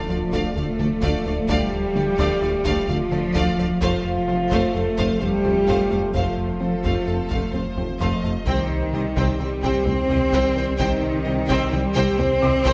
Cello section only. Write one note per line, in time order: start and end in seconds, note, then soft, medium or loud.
0.09 0.56 F3 medium
0.56 1.47 A3 medium
1.49 2.89 G3 medium
2.89 3.81 F3 loud
3.82 4.73 F3 loud
4.75 5.21 A3 loud
5.22 6.14 G3 loud
6.15 8.20 F3 medium
8.47 9.36 D#3 medium
9.40 9.87 G3 medium
9.86 10.79 C4 loud
10.80 11.71 D#3 medium
11.72 12.19 G3 loud
12.19 12.73 C4 loud